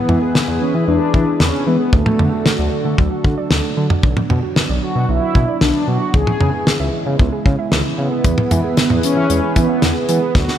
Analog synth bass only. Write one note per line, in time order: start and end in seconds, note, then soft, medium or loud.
0.09 0.19 E3 loud
0.48 0.58 E2 loud
0.75 0.85 E3 medium
0.88 0.98 E2 loud
1.14 1.24 E3 medium
1.40 1.50 E2 loud
1.67 1.77 E3 loud
1.93 2.03 D2 loud
2.19 2.29 D3 loud
2.59 2.69 D2 loud
2.85 2.95 D3 loud
2.98 3.08 D2 loud
3.25 3.35 D3 medium
3.51 3.61 D2 loud
3.77 3.87 D3 loud
4.03 4.13 B1 loud
4.30 4.40 B2 loud
4.69 4.79 B1 loud
4.96 5.06 B2 loud
5.09 5.19 B1 loud
5.35 5.45 B2 loud
5.61 5.71 B1 loud
5.88 5.98 B2 loud
6.14 6.24 C#2 loud
6.40 6.50 C#3 loud
6.80 6.90 C#2 medium
7.06 7.16 C#3 loud
7.19 7.29 C#2 loud
7.46 7.56 C#3 loud
7.72 7.82 C#2 loud
7.98 8.08 C#3 loud
8.24 8.35 E2 loud
8.51 8.61 E3 loud
8.90 9.00 E2 loud
9.17 9.27 E3 medium
9.30 9.40 E2 loud
9.56 9.66 E3 medium
9.82 9.92 E2 loud
10.09 10.19 E3 loud
10.35 10.45 D2 loud